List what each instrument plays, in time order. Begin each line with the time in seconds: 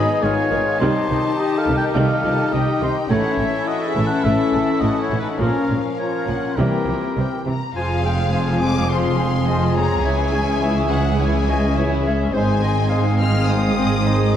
Already playing: french horn section D#3 D#4, violin section B3 D#4 B5, flute section G#4, trumpet section G#4, oboe D#5
0.21 double bass section G#1, cello section G#2, viola section D#3 G#3, flute section F4, oboe C#5, violin section G#5
0.51 double bass section G#1, cello section G#2, viola section D#3
0.78 double bass section C2, cello section C3, viola section D#3 G3, flute section D#4, violin section D#4 A5, trumpet section G4, oboe C5
1.09 double bass section C2, cello section C3, viola section D#3 F3
1.37 flute section G4, oboe D#5
1.57 flute section A4, oboe F5
1.66 double bass section C2, cello section C3, viola section D#3
1.77 flute section A#4, oboe G5
1.94 double bass section C2, cello section C3, viola section D#3 G3, flute section A4, oboe F5, violin section G5
2.22 double bass section C2, cello section C3, viola section D#3 F3, violin section A5
2.51 double bass section C2, cello section C3, viola section D#3 G3, flute section G4, oboe D#5, violin section G5
2.80 double bass section C2, cello section C3, viola section D#3, flute section D#4, oboe C5
3.08 double bass section A1, cello section A2, french horn section E3 C#4, viola section A3, violin section C#4 E4 F#5, flute section E4, trumpet section A4, oboe C#5
3.38 double bass section A1, cello section A2, viola section G#3 A3, violin section E5
3.66 flute section F#4, oboe D#5
3.85 flute section G#4, oboe E5
3.95 double bass section A1, cello section A2, viola section E3 A3
4.04 flute section A4, oboe F#5
4.24 double bass section A1, cello section A2, viola section A3, flute section A4, oboe E5
4.52 double bass section A1, cello section A2, viola section G#3 A3
4.81 double bass section A1, cello section A2, viola section A3, flute section F#4, oboe D#5, violin section F#5
5.00 flute section E4, oboe C#5
5.09 double bass section A1, cello section A2, viola section E3 A3
5.19 flute section D#4, oboe B4
5.38 double bass section A#1, cello section A#2, viola section F3 A#3, french horn section F3, flute section C#4, violin section C#4 F5, oboe A#4, trumpet section A#4
5.68 double bass section A#1, cello section A#2, viola section F3 G#3
5.97 flute section F4, oboe C#5, violin section A#5
6.26 double bass section A#1, cello section A#2, viola section F3, violin section F#5
6.56 double bass section C2, cello section C3, viola section E3 G3, french horn section E3 C4, violin section A#3 C4 G5, flute section E4, trumpet section G4, oboe A#4
6.87 double bass section C2, cello section C3, viola section E3 F3
7.16 double bass section C2, cello section C3, viola section E3 G3, violin section G5
7.46 double bass section C2, cello section C3, viola section E3, violin section A#5
7.74 double bass section F1, cello section F2, viola section F3 F4, french horn section F3 C4, violin section F4 C5 F5, trumpet section G#4, oboe C5, clarinet G#5, flute section G#5
8.04 viola section G#3 C4, violin section G#4 F5, oboe C5, clarinet G5, flute section G#5
8.32 viola section F3 F4, violin section F4 C5, oboe C5, clarinet G#5, flute section G#5
8.61 viola section G#3 C4, violin section G#4 F5 D6, oboe C5, flute section G#5
8.90 viola section F3 F4, violin section F4 C5 C6, oboe C5, clarinet F5, flute section G#5
9.18 viola section G#3 C4, violin section G#4 F5, oboe C5, flute section G#5
9.46 viola section F3 F4, violin section F4 C5, oboe C5, clarinet D#5, flute section G#5
9.76 viola section G#3 C4, violin section G#4 F5 A#5, oboe C5, clarinet C#5, flute section G#5
10.04 double bass section C#2, cello section C#2, french horn section E3 C#4, viola section E3 E4, violin section E4 C#5 G#5, oboe C#5, flute section E5
10.33 viola section G#3 C#4, violin section G#4 E5, oboe C#5, flute section E5
10.60 viola section E3 E4, violin section E4 C#5, oboe C#5, flute section E5, clarinet E5
10.88 viola section G#3 C#4, violin section G#4 E5 F#5, flute section E5
10.93 oboe C#5
11.19 viola section E3 E4, violin section E4 C#5 G#5, oboe C#5, clarinet C#5, flute section E5
11.49 viola section G#3 C#4, violin section G#4 E5, oboe C#5, clarinet D#5, flute section E5
11.76 viola section E3 E4, violin section E4 C#5, oboe C#5, clarinet E5, flute section E5
12.05 viola section G#3 C#4, violin section G#4 E5, oboe C#5, flute section E5
12.33 double bass section G#1, cello section G#2, french horn section D#3 C4, viola section G#3 D#4, trumpet section G#4, violin section C5 G#5, clarinet C5, oboe C5, flute section D#5
12.62 viola section C4, violin section G#4 D#5, oboe C5, clarinet D#5
12.90 viola section G#3 D#4, violin section C5, oboe C5, flute section D#5, clarinet F5
13.20 viola section C4, violin section G#4 D#5 F6, oboe C5, flute section D#5
13.48 viola section G#3 D#4, violin section C5 D#6, oboe C5, flute section D#5
13.77 viola section C4, violin section G#4 D#5, oboe C5, flute section D#5
14.06 viola section G#3 D#4, oboe C5, violin section C5, clarinet D#5, flute section D#5